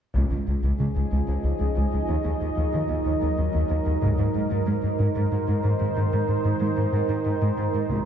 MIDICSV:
0, 0, Header, 1, 5, 480
1, 0, Start_track
1, 0, Tempo, 645161
1, 115, Time_signature, 6, 3, 24, 8
1, 5991, End_track
2, 0, Start_track
2, 0, Title_t, "Ambient pad"
2, 0, Program_c, 0, 92
2, 117, Note_on_c, 0, 53, 60
2, 117, Note_on_c, 0, 75, 58
2, 118, Note_on_c, 0, 63, 62
2, 118, Note_on_c, 0, 68, 60
2, 1527, Note_off_c, 0, 53, 0
2, 1527, Note_off_c, 0, 68, 0
2, 1547, Note_on_c, 0, 70, 61
2, 1548, Note_on_c, 0, 54, 57
2, 2967, Note_off_c, 0, 63, 0
2, 2967, Note_off_c, 0, 75, 0
2, 2992, Note_off_c, 0, 54, 0
2, 2994, Note_on_c, 0, 51, 65
2, 2995, Note_on_c, 0, 72, 65
2, 2997, Note_on_c, 0, 63, 66
2, 5871, Note_off_c, 0, 70, 0
2, 5875, Note_off_c, 0, 51, 0
2, 5875, Note_off_c, 0, 72, 0
2, 5877, Note_on_c, 0, 53, 65
2, 5879, Note_on_c, 0, 68, 62
2, 5881, Note_on_c, 0, 73, 65
2, 5991, Note_off_c, 0, 53, 0
2, 5991, Note_off_c, 0, 63, 0
2, 5991, Note_off_c, 0, 68, 0
2, 5991, Note_off_c, 0, 73, 0
2, 5991, End_track
3, 0, Start_track
3, 0, Title_t, "Analog synth bass"
3, 0, Program_c, 1, 38
3, 115, Note_on_c, 1, 37, 68
3, 187, Note_off_c, 1, 37, 0
3, 232, Note_on_c, 1, 37, 49
3, 305, Note_off_c, 1, 37, 0
3, 357, Note_on_c, 1, 37, 46
3, 428, Note_off_c, 1, 37, 0
3, 474, Note_on_c, 1, 37, 70
3, 546, Note_off_c, 1, 37, 0
3, 594, Note_on_c, 1, 49, 48
3, 667, Note_off_c, 1, 49, 0
3, 718, Note_on_c, 1, 37, 49
3, 790, Note_off_c, 1, 37, 0
3, 836, Note_on_c, 1, 37, 67
3, 908, Note_off_c, 1, 37, 0
3, 954, Note_on_c, 1, 37, 44
3, 1026, Note_off_c, 1, 37, 0
3, 1072, Note_on_c, 1, 37, 54
3, 1145, Note_off_c, 1, 37, 0
3, 1197, Note_on_c, 1, 37, 64
3, 1269, Note_off_c, 1, 37, 0
3, 1324, Note_on_c, 1, 37, 52
3, 1393, Note_off_c, 1, 37, 0
3, 1444, Note_on_c, 1, 37, 51
3, 1514, Note_off_c, 1, 37, 0
3, 1557, Note_on_c, 1, 39, 70
3, 1628, Note_off_c, 1, 39, 0
3, 1679, Note_on_c, 1, 39, 52
3, 1750, Note_off_c, 1, 39, 0
3, 1797, Note_on_c, 1, 39, 48
3, 1868, Note_off_c, 1, 39, 0
3, 1918, Note_on_c, 1, 39, 70
3, 1990, Note_off_c, 1, 39, 0
3, 2043, Note_on_c, 1, 51, 46
3, 2112, Note_off_c, 1, 51, 0
3, 2160, Note_on_c, 1, 39, 53
3, 2230, Note_off_c, 1, 39, 0
3, 2274, Note_on_c, 1, 39, 67
3, 2347, Note_off_c, 1, 39, 0
3, 2402, Note_on_c, 1, 39, 49
3, 2472, Note_off_c, 1, 39, 0
3, 2519, Note_on_c, 1, 39, 48
3, 2590, Note_off_c, 1, 39, 0
3, 2640, Note_on_c, 1, 39, 69
3, 2711, Note_off_c, 1, 39, 0
3, 2759, Note_on_c, 1, 39, 45
3, 2830, Note_off_c, 1, 39, 0
3, 2876, Note_on_c, 1, 39, 51
3, 2948, Note_off_c, 1, 39, 0
3, 2999, Note_on_c, 1, 44, 73
3, 3070, Note_off_c, 1, 44, 0
3, 3118, Note_on_c, 1, 44, 52
3, 3189, Note_off_c, 1, 44, 0
3, 3242, Note_on_c, 1, 44, 44
3, 3312, Note_off_c, 1, 44, 0
3, 3360, Note_on_c, 1, 44, 65
3, 3431, Note_off_c, 1, 44, 0
3, 3480, Note_on_c, 1, 56, 51
3, 3551, Note_off_c, 1, 56, 0
3, 3598, Note_on_c, 1, 44, 51
3, 3669, Note_off_c, 1, 44, 0
3, 3717, Note_on_c, 1, 44, 66
3, 3789, Note_off_c, 1, 44, 0
3, 3841, Note_on_c, 1, 44, 52
3, 3912, Note_off_c, 1, 44, 0
3, 3957, Note_on_c, 1, 44, 54
3, 4029, Note_off_c, 1, 44, 0
3, 4081, Note_on_c, 1, 44, 66
3, 4151, Note_off_c, 1, 44, 0
3, 4201, Note_on_c, 1, 44, 53
3, 4271, Note_off_c, 1, 44, 0
3, 4324, Note_on_c, 1, 44, 52
3, 4394, Note_off_c, 1, 44, 0
3, 4442, Note_on_c, 1, 44, 67
3, 4512, Note_off_c, 1, 44, 0
3, 4564, Note_on_c, 1, 44, 50
3, 4633, Note_off_c, 1, 44, 0
3, 4678, Note_on_c, 1, 44, 46
3, 4749, Note_off_c, 1, 44, 0
3, 4799, Note_on_c, 1, 44, 67
3, 4870, Note_off_c, 1, 44, 0
3, 4923, Note_on_c, 1, 56, 52
3, 4993, Note_off_c, 1, 56, 0
3, 5040, Note_on_c, 1, 44, 55
3, 5111, Note_off_c, 1, 44, 0
3, 5154, Note_on_c, 1, 44, 67
3, 5226, Note_off_c, 1, 44, 0
3, 5275, Note_on_c, 1, 44, 49
3, 5347, Note_off_c, 1, 44, 0
3, 5401, Note_on_c, 1, 44, 54
3, 5471, Note_off_c, 1, 44, 0
3, 5521, Note_on_c, 1, 44, 69
3, 5591, Note_off_c, 1, 44, 0
3, 5638, Note_on_c, 1, 44, 54
3, 5709, Note_off_c, 1, 44, 0
3, 5759, Note_on_c, 1, 44, 48
3, 5830, Note_off_c, 1, 44, 0
3, 5873, Note_on_c, 1, 37, 73
3, 5946, Note_off_c, 1, 37, 0
3, 5991, End_track
4, 0, Start_track
4, 0, Title_t, "Cello section"
4, 0, Program_c, 2, 48
4, 118, Note_on_c, 2, 37, 47
4, 166, Note_off_c, 2, 37, 0
4, 233, Note_on_c, 2, 37, 36
4, 282, Note_off_c, 2, 37, 0
4, 356, Note_on_c, 2, 37, 36
4, 404, Note_off_c, 2, 37, 0
4, 473, Note_on_c, 2, 37, 46
4, 521, Note_off_c, 2, 37, 0
4, 593, Note_on_c, 2, 37, 33
4, 642, Note_off_c, 2, 37, 0
4, 713, Note_on_c, 2, 37, 33
4, 761, Note_off_c, 2, 37, 0
4, 836, Note_on_c, 2, 37, 47
4, 884, Note_off_c, 2, 37, 0
4, 952, Note_on_c, 2, 37, 36
4, 1001, Note_off_c, 2, 37, 0
4, 1074, Note_on_c, 2, 37, 32
4, 1122, Note_off_c, 2, 37, 0
4, 1190, Note_on_c, 2, 37, 47
4, 1240, Note_off_c, 2, 37, 0
4, 1312, Note_on_c, 2, 37, 35
4, 1360, Note_off_c, 2, 37, 0
4, 1432, Note_on_c, 2, 37, 36
4, 1480, Note_off_c, 2, 37, 0
4, 1551, Note_on_c, 2, 39, 48
4, 1600, Note_off_c, 2, 39, 0
4, 1671, Note_on_c, 2, 39, 34
4, 1720, Note_off_c, 2, 39, 0
4, 1794, Note_on_c, 2, 39, 33
4, 1842, Note_off_c, 2, 39, 0
4, 1910, Note_on_c, 2, 39, 46
4, 1959, Note_off_c, 2, 39, 0
4, 2033, Note_on_c, 2, 39, 35
4, 2081, Note_off_c, 2, 39, 0
4, 2153, Note_on_c, 2, 39, 35
4, 2201, Note_off_c, 2, 39, 0
4, 2273, Note_on_c, 2, 39, 47
4, 2322, Note_off_c, 2, 39, 0
4, 2394, Note_on_c, 2, 39, 34
4, 2442, Note_off_c, 2, 39, 0
4, 2514, Note_on_c, 2, 39, 31
4, 2562, Note_off_c, 2, 39, 0
4, 2631, Note_on_c, 2, 39, 51
4, 2680, Note_off_c, 2, 39, 0
4, 2751, Note_on_c, 2, 39, 36
4, 2800, Note_off_c, 2, 39, 0
4, 2872, Note_on_c, 2, 39, 34
4, 2920, Note_off_c, 2, 39, 0
4, 2989, Note_on_c, 2, 44, 50
4, 3039, Note_off_c, 2, 44, 0
4, 3111, Note_on_c, 2, 44, 38
4, 3160, Note_off_c, 2, 44, 0
4, 3230, Note_on_c, 2, 44, 37
4, 3279, Note_off_c, 2, 44, 0
4, 3352, Note_on_c, 2, 44, 50
4, 3401, Note_off_c, 2, 44, 0
4, 3473, Note_on_c, 2, 44, 33
4, 3521, Note_off_c, 2, 44, 0
4, 3593, Note_on_c, 2, 44, 35
4, 3642, Note_off_c, 2, 44, 0
4, 3715, Note_on_c, 2, 44, 55
4, 3763, Note_off_c, 2, 44, 0
4, 3836, Note_on_c, 2, 44, 36
4, 3884, Note_off_c, 2, 44, 0
4, 3956, Note_on_c, 2, 44, 37
4, 4004, Note_off_c, 2, 44, 0
4, 4074, Note_on_c, 2, 44, 48
4, 4122, Note_off_c, 2, 44, 0
4, 4193, Note_on_c, 2, 44, 40
4, 4241, Note_off_c, 2, 44, 0
4, 4313, Note_on_c, 2, 44, 39
4, 4361, Note_off_c, 2, 44, 0
4, 4435, Note_on_c, 2, 44, 52
4, 4483, Note_off_c, 2, 44, 0
4, 4559, Note_on_c, 2, 44, 37
4, 4606, Note_off_c, 2, 44, 0
4, 4677, Note_on_c, 2, 44, 35
4, 4724, Note_off_c, 2, 44, 0
4, 4796, Note_on_c, 2, 44, 50
4, 4844, Note_off_c, 2, 44, 0
4, 4914, Note_on_c, 2, 44, 41
4, 4963, Note_off_c, 2, 44, 0
4, 5034, Note_on_c, 2, 44, 36
4, 5082, Note_off_c, 2, 44, 0
4, 5157, Note_on_c, 2, 44, 51
4, 5205, Note_off_c, 2, 44, 0
4, 5273, Note_on_c, 2, 44, 39
4, 5322, Note_off_c, 2, 44, 0
4, 5397, Note_on_c, 2, 44, 42
4, 5445, Note_off_c, 2, 44, 0
4, 5515, Note_on_c, 2, 44, 60
4, 5563, Note_off_c, 2, 44, 0
4, 5636, Note_on_c, 2, 44, 45
4, 5684, Note_off_c, 2, 44, 0
4, 5758, Note_on_c, 2, 44, 37
4, 5806, Note_off_c, 2, 44, 0
4, 5876, Note_on_c, 2, 37, 50
4, 5935, Note_off_c, 2, 37, 0
4, 5991, End_track
5, 0, Start_track
5, 0, Title_t, "Taiko and cinematic ensemble drums"
5, 113, Note_on_c, 9, 41, 48
5, 188, Note_off_c, 9, 41, 0
5, 2992, Note_on_c, 9, 41, 49
5, 3066, Note_off_c, 9, 41, 0
5, 5874, Note_on_c, 9, 41, 51
5, 5949, Note_off_c, 9, 41, 0
5, 5991, End_track
0, 0, End_of_file